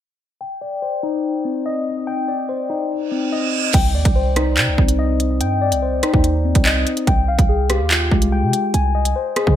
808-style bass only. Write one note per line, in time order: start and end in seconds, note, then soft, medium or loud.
3.74 3.96 C2 loud
3.95 4.05 D#2 loud
4.05 4.59 C2 loud
4.57 4.69 C3 loud
4.68 4.78 C2 loud
4.78 5.42 C2 loud
5.41 5.73 G2 loud
5.72 6.02 C2 loud
6.14 6.54 D#2 loud
6.55 6.85 C2 loud
7.07 7.30 C2 loud
7.28 7.38 B1 loud
7.39 7.82 C2 loud
7.80 8.10 D#2 loud
8.12 8.44 C2 loud
8.43 8.53 C3 loud
8.74 9.14 C2 loud
9.47 9.56 C3 loud